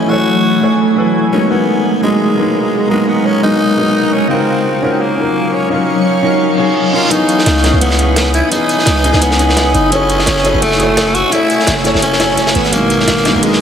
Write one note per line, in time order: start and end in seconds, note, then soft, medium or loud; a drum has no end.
0.00 1.30 E3 medium
0.00 1.34 E3 medium
0.00 1.30 F#3 medium
0.00 1.30 A3 medium
0.00 0.11 C#4 medium
0.00 0.07 E4 medium
0.00 0.08 F#4 medium
0.00 0.10 G#4 medium
0.00 0.11 A4 medium
0.00 0.13 C#5 medium
0.00 1.30 G#5 medium
0.07 0.59 E4 medium
0.07 0.60 F#4 medium
0.07 0.80 F#4 loud
0.07 0.60 G#4 medium
0.11 0.61 A4 medium
0.11 0.62 C#5 medium
0.61 0.94 E4 medium
0.61 0.95 F#4 medium
0.61 0.95 G#4 medium
0.61 0.96 A4 medium
0.61 0.96 C#5 medium
0.96 1.30 E4 medium
0.96 1.30 F#4 medium
0.96 1.30 G#4 medium
0.96 1.31 A4 medium
0.96 1.31 B4 medium
1.31 1.45 F#3 medium
1.31 1.47 G#3 medium
1.31 4.10 G#3 medium
1.31 1.48 A#3 medium
1.31 1.48 B3 medium
1.31 1.51 C#4 medium
1.31 1.49 D#4 medium
1.31 4.10 F#4 medium
1.31 4.10 A#4 medium
1.47 1.99 F#3 medium
1.47 2.00 G#3 medium
1.47 2.02 B3 medium
1.47 2.01 A#4 medium
1.51 2.01 B3 medium
1.51 2.02 D#4 medium
2.01 2.33 F#3 medium
2.01 2.35 G#3 medium
2.01 2.86 G#3 medium
2.01 2.36 A#3 medium
2.01 2.36 B3 medium
2.01 2.37 D#4 medium
2.35 2.86 F#3 medium
2.35 2.87 G#3 medium
2.35 2.88 A#3 medium
2.39 2.89 B3 medium
2.39 2.90 D#4 medium
2.87 3.40 F#3 medium
2.87 3.40 G#3 medium
2.87 3.09 G#3 medium
2.87 3.41 A#3 medium
2.92 3.42 B3 medium
2.92 3.43 D#4 medium
3.08 3.27 B3 medium
3.25 3.42 C#4 loud
3.42 3.75 F#3 medium
3.42 3.76 G#3 medium
3.42 3.76 A#3 medium
3.42 3.77 B3 medium
3.42 4.15 D#4 loud
3.42 3.77 D#4 medium
3.77 4.11 F#3 medium
3.77 4.12 G#3 medium
3.77 4.12 A#3 medium
3.77 4.13 B3 medium
3.77 4.13 D#4 medium
4.13 7.08 F#3 medium
4.13 4.30 C#4 medium
4.13 7.08 D#4 medium
4.13 7.08 F5 medium
4.13 7.08 C#6 medium
4.28 4.80 C#3 medium
4.28 5.02 C4 loud
4.28 4.81 D#4 medium
4.28 4.81 F4 medium
4.32 4.82 F#4 medium
4.32 4.83 A#4 medium
4.82 5.14 C#4 medium
4.82 5.15 D#4 medium
4.82 5.16 F4 medium
4.82 5.17 F#4 medium
4.82 5.17 A#4 medium
5.01 5.55 A#3 medium
5.15 5.67 C#4 medium
5.15 5.68 D#4 medium
5.15 5.69 F4 medium
5.20 5.70 F#4 medium
5.20 5.71 A#4 medium
5.54 5.71 C#4 medium
5.68 6.20 C#4 medium
5.68 6.72 C#4 medium
5.68 6.21 D#4 medium
5.68 6.22 F4 medium
5.73 6.23 F#4 medium
5.73 6.23 A#4 medium
6.22 6.56 C#4 medium
6.22 6.56 D#4 medium
6.22 6.57 F4 medium
6.22 6.57 F#4 medium
6.22 6.58 A#4 medium
6.41 reverse cymbal medium
6.57 6.91 C#4 medium
6.57 6.91 D#4 medium
6.57 6.92 F4 medium
6.57 6.92 F#4 medium
6.57 6.93 G#4 medium
6.92 7.08 C#4 medium
6.92 7.09 D#4 medium
6.92 7.09 F4 medium
6.92 7.13 F4 medium
6.92 7.10 F#4 medium
6.92 7.10 A#4 medium
7.08 7.60 B3 medium
7.08 7.61 C#4 medium
7.08 7.81 D#4 loud
7.08 7.62 D#4 medium
7.08 9.89 B4 medium
7.08 9.89 D#6 medium
7.08 kick medium
7.08 closed hi-hat medium
7.13 7.63 E3 medium
7.13 7.64 G#4 medium
7.29 closed hi-hat medium
7.39 snare soft
7.46 7.72 C#2 medium
7.46 kick medium
7.46 snare loud
7.46 closed hi-hat medium
7.57 snare soft
7.62 7.94 B3 medium
7.62 7.96 C#4 medium
7.62 7.97 D#4 medium
7.62 7.98 E4 medium
7.62 7.98 G#4 medium
7.62 snare medium
7.62 closed hi-hat medium
7.73 8.42 C#2 medium
7.81 8.30 B3 medium
7.81 kick loud
7.81 closed hi-hat medium
7.81 open hi-hat medium
7.91 snare soft
7.96 8.47 B3 medium
7.96 8.48 C#4 medium
7.96 8.50 D#4 medium
7.96 closed hi-hat medium
8.01 8.51 E4 medium
8.01 8.51 G#4 medium
8.16 kick loud
8.16 snare loud
8.16 closed hi-hat medium
8.25 closed hi-hat soft
8.34 8.51 E4 loud
8.34 closed hi-hat medium
8.48 9.01 B3 medium
8.48 9.02 C#4 medium
8.48 9.23 D#4 loud
8.48 9.02 D#4 medium
8.48 kick medium
8.48 closed hi-hat medium
8.53 9.03 E3 medium
8.53 9.04 G#4 medium
8.69 closed hi-hat medium
8.79 snare soft
8.86 9.12 C#2 loud
8.86 kick loud
8.86 snare loud
8.86 closed hi-hat medium
8.96 snare soft
9.03 9.35 B3 medium
9.03 9.36 C#4 medium
9.03 9.37 D#4 medium
9.03 9.38 E4 medium
9.03 9.38 G#4 medium
9.03 closed hi-hat medium
9.13 9.73 C#2 loud
9.13 snare medium
9.21 9.76 B3 loud
9.21 kick loud
9.21 closed hi-hat medium
9.31 snare medium
9.36 9.89 B3 medium
9.36 9.89 C#4 medium
9.36 9.90 D#4 medium
9.36 closed hi-hat medium
9.41 9.87 E4 medium
9.41 9.90 G#4 medium
9.49 snare soft
9.57 kick loud
9.57 snare loud
9.57 closed hi-hat medium
9.74 10.26 F#1 loud
9.74 9.91 D#4 loud
9.74 closed hi-hat medium
9.89 12.53 A3 medium
9.89 10.64 C#4 loud
9.89 10.41 E4 medium
9.89 10.42 F#4 medium
9.89 10.43 G#4 medium
9.89 12.53 G#5 medium
9.89 12.53 E6 medium
9.89 kick medium
9.89 closed hi-hat medium
9.94 10.44 A4 medium
9.94 10.44 C#5 medium
10.10 closed hi-hat medium
10.19 snare soft
10.26 10.53 F#1 loud
10.26 kick loud
10.26 snare loud
10.26 closed hi-hat medium
10.36 snare soft
10.43 10.75 E4 medium
10.43 10.77 F#4 medium
10.43 10.78 G#4 medium
10.43 10.78 A4 medium
10.43 10.79 C#5 medium
10.43 closed hi-hat medium
10.54 11.23 F#1 loud
10.62 11.16 A3 loud
10.62 kick medium
10.62 closed hi-hat medium
10.62 open hi-hat medium
10.72 snare soft
10.77 11.28 E4 medium
10.77 11.29 F#4 medium
10.77 11.30 G#4 medium
10.77 closed hi-hat medium
10.81 11.31 A4 medium
10.81 11.32 C#5 medium
10.97 kick loud
10.97 snare loud
10.97 closed hi-hat medium
11.08 closed hi-hat soft
11.15 11.34 F#4 loud
11.15 closed hi-hat medium
11.29 11.82 E4 medium
11.29 11.76 E4 loud
11.29 11.82 F#4 medium
11.29 11.83 G#4 medium
11.29 kick medium
11.29 closed hi-hat medium
11.34 11.84 A4 medium
11.34 11.85 C#5 medium
11.50 closed hi-hat medium
11.59 snare soft
11.67 11.93 F#1 loud
11.67 kick loud
11.67 snare loud
11.67 closed hi-hat medium
11.77 snare soft
11.84 12.17 E4 medium
11.84 12.18 F#4 medium
11.84 12.18 G#4 medium
11.84 12.19 A4 medium
11.84 12.19 C#5 medium
11.84 snare soft
11.84 closed hi-hat medium
11.94 12.54 F#1 medium
11.94 snare medium
12.02 12.57 C#4 loud
12.02 kick loud
12.02 closed hi-hat medium
12.13 snare medium
12.19 12.54 E4 medium
12.19 12.54 F#4 medium
12.19 12.54 G#4 medium
12.19 12.55 A4 medium
12.19 12.55 C#5 medium
12.19 snare loud
12.19 closed hi-hat medium
12.30 snare soft
12.37 kick loud
12.37 snare soft
12.37 closed hi-hat medium
12.47 snare loud
12.47 closed hi-hat medium
12.55 13.07 G#1 loud
12.55 12.74 B3 medium
12.55 13.61 F#5 medium
12.55 13.61 G#5 medium
12.55 13.61 A#5 medium
12.55 snare soft
12.55 closed hi-hat medium
12.64 snare soft
12.64 closed hi-hat medium
12.70 13.22 F#3 medium
12.70 13.23 G#3 medium
12.70 13.24 A#3 medium
12.70 13.45 A#3 loud
12.70 kick loud
12.70 closed hi-hat medium
12.70 riser medium
12.74 13.24 B2 medium
12.74 13.25 D#4 medium
12.90 closed hi-hat medium
13.00 snare soft
13.08 13.33 G#1 loud
13.08 kick loud
13.08 snare loud
13.08 closed hi-hat medium
13.17 snare soft
13.24 13.38 F#3 medium
13.24 13.40 G#3 medium
13.24 13.41 A#3 medium
13.24 13.42 B3 medium
13.24 13.42 D#4 medium
13.24 snare medium
13.24 closed hi-hat medium
13.35 13.61 G#1 loud
13.40 13.61 F#3 medium
13.40 13.61 G#3 medium
13.40 13.61 A#3 medium
13.40 kick loud
13.40 closed hi-hat medium
13.40 open hi-hat medium
13.45 13.61 B3 medium
13.45 13.61 D#4 medium
13.53 snare soft